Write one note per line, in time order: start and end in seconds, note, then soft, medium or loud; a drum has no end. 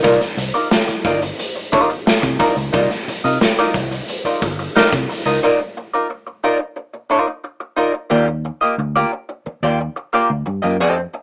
0.02 0.17 C2 loud
0.02 0.20 D#4 medium
0.02 0.20 F4 medium
0.02 0.20 A#4 medium
0.02 0.20 D5 medium
0.02 kick loud
0.02 closed hi-hat medium
0.21 muted hollow-body jazz guitar stroke medium
0.21 snare soft
0.21 closed hi-hat soft
0.37 0.50 C2 medium
0.37 muted hollow-body jazz guitar stroke soft
0.37 closed hi-hat medium
0.54 0.68 D#4 soft
0.54 0.68 F4 medium
0.54 0.67 A#4 medium
0.54 0.67 D5 medium
0.54 closed hi-hat soft
0.71 muted hollow-body jazz guitar stroke soft
0.71 snare medium
0.88 muted hollow-body jazz guitar stroke soft
0.88 muted fingered electric bass stroke soft
0.88 closed hi-hat medium
1.05 1.30 G1 medium
1.05 1.21 D#4 medium
1.05 1.22 F4 medium
1.05 1.21 A#4 medium
1.05 1.21 D5 medium
1.05 kick loud
1.05 closed hi-hat medium
1.22 muted hollow-body jazz guitar stroke soft
1.22 closed hi-hat medium
1.38 muted hollow-body jazz guitar stroke soft
1.38 closed hi-hat medium
1.56 muted hollow-body jazz guitar stroke soft
1.56 closed hi-hat soft
1.72 1.92 D#4 medium
1.72 1.90 F4 medium
1.72 1.89 A#4 medium
1.72 1.89 D5 medium
1.72 kick loud
1.72 closed hi-hat medium
1.90 muted hollow-body jazz guitar stroke soft
1.90 closed hi-hat soft
2.06 muted hollow-body jazz guitar stroke soft
2.06 snare loud
2.22 2.36 C3 medium
2.22 muted hollow-body jazz guitar stroke soft
2.22 kick medium
2.22 closed hi-hat medium
2.39 2.56 D#4 medium
2.39 2.55 F4 medium
2.39 2.55 A#4 medium
2.39 2.54 D5 loud
2.39 kick loud
2.39 open hi-hat medium
2.56 2.69 C#2 medium
2.56 muted hollow-body jazz guitar stroke soft
2.56 closed hi-hat medium
2.72 2.87 C2 loud
2.72 2.89 D#4 medium
2.72 2.90 F4 medium
2.72 2.90 A#4 medium
2.72 2.89 D5 medium
2.72 kick loud
2.72 closed hi-hat medium
2.91 muted hollow-body jazz guitar stroke medium
2.91 snare soft
2.91 closed hi-hat soft
3.08 muted fingered electric bass stroke soft
3.08 muted hollow-body jazz guitar stroke soft
3.08 closed hi-hat medium
3.24 3.37 C3 medium
3.24 3.38 D#4 medium
3.24 3.37 F4 medium
3.24 3.37 A#4 medium
3.24 3.37 D#5 medium
3.24 closed hi-hat medium
3.40 muted hollow-body jazz guitar stroke soft
3.40 snare medium
3.59 3.74 D#4 medium
3.59 3.75 F4 medium
3.59 3.75 A#4 medium
3.59 3.75 D5 medium
3.59 closed hi-hat medium
3.74 4.00 C2 medium
3.74 muted hollow-body jazz guitar stroke soft
3.74 kick medium
3.74 closed hi-hat medium
3.91 muted hollow-body jazz guitar stroke medium
3.91 closed hi-hat medium
4.08 muted hollow-body jazz guitar stroke soft
4.08 closed hi-hat medium
4.24 4.42 D#4 medium
4.24 4.42 F4 medium
4.24 4.41 A#4 medium
4.24 4.41 D5 medium
4.24 muted fingered electric bass stroke soft
4.24 closed hi-hat soft
4.42 4.67 G1 medium
4.42 muted hollow-body jazz guitar stroke soft
4.42 kick medium
4.42 closed hi-hat medium
4.59 muted hollow-body jazz guitar stroke soft
4.59 closed hi-hat soft
4.76 4.92 D#4 medium
4.76 4.92 F4 medium
4.76 4.92 A#4 medium
4.76 4.93 D5 medium
4.76 snare medium
4.93 5.05 C3 medium
4.93 kick medium
4.93 closed hi-hat medium
5.09 muted hollow-body jazz guitar stroke soft
5.09 open hi-hat medium
5.26 5.38 C#2 medium
5.26 5.39 D#4 medium
5.26 5.39 F4 medium
5.26 5.39 A#4 medium
5.26 5.39 D#5 medium
5.26 closed hi-hat medium
5.43 5.59 D#4 medium
5.43 5.59 F4 medium
5.43 5.59 A#4 medium
5.43 5.59 D5 medium
5.60 muted hollow-body jazz guitar stroke soft
5.77 muted hollow-body jazz guitar stroke soft
5.93 6.07 D#4 soft
5.93 6.07 F4 medium
5.93 6.06 A#4 medium
5.93 6.06 D5 medium
6.10 muted hollow-body jazz guitar stroke soft
6.27 muted hollow-body jazz guitar stroke soft
6.44 6.60 D#4 medium
6.44 6.59 F4 medium
6.44 6.59 A#4 medium
6.44 6.58 D5 medium
6.59 muted hollow-body jazz guitar stroke soft
6.76 muted hollow-body jazz guitar stroke soft
6.93 muted hollow-body jazz guitar stroke soft
7.10 7.30 D#4 medium
7.10 7.27 F4 medium
7.10 7.26 A#4 medium
7.10 7.26 D5 medium
7.27 muted hollow-body jazz guitar stroke medium
7.44 muted hollow-body jazz guitar stroke soft
7.60 muted hollow-body jazz guitar stroke soft
7.76 7.94 D#4 medium
7.76 7.93 F4 medium
7.76 7.93 A#4 medium
7.76 7.93 D5 medium
7.94 muted hollow-body jazz guitar stroke soft
8.10 8.49 D#2 loud
8.10 8.27 A#3 medium
8.10 8.27 F4 medium
8.10 8.27 G4 medium
8.10 8.27 D5 medium
8.28 muted hollow-body jazz guitar stroke medium
8.45 muted hollow-body jazz guitar stroke soft
8.61 8.75 A#3 medium
8.61 8.75 F4 medium
8.61 8.75 G4 medium
8.61 8.74 D#5 medium
8.78 9.04 D2 loud
8.78 muted hollow-body jazz guitar stroke soft
8.96 9.12 A#3 medium
8.96 9.12 F4 medium
8.96 9.12 G4 medium
8.96 9.12 D5 medium
9.13 muted hollow-body jazz guitar stroke soft
9.29 muted hollow-body jazz guitar stroke soft
9.46 muted hollow-body jazz guitar stroke soft
9.46 muted fingered electric bass stroke soft
9.63 9.88 D#2 medium
9.63 9.79 A#3 medium
9.63 9.80 F4 medium
9.63 9.79 G4 medium
9.63 9.79 D5 medium
9.80 muted hollow-body jazz guitar stroke soft
9.96 muted hollow-body jazz guitar stroke soft
10.13 10.29 A#3 medium
10.13 10.29 F4 medium
10.13 10.30 G4 medium
10.13 10.30 D5 medium
10.30 10.43 D2 medium
10.46 10.60 G2 medium
10.46 muted hollow-body jazz guitar stroke medium
10.62 10.81 F#2 medium
10.62 10.76 A#3 medium
10.62 10.76 F4 medium
10.62 10.76 G4 medium
10.62 10.75 D#5 medium
10.80 11.06 F2 loud
10.80 11.00 C4 medium
10.80 10.96 G4 medium
10.80 10.96 A4 loud
10.80 10.96 D#5 medium
10.97 muted hollow-body jazz guitar stroke medium
11.14 muted hollow-body jazz guitar stroke soft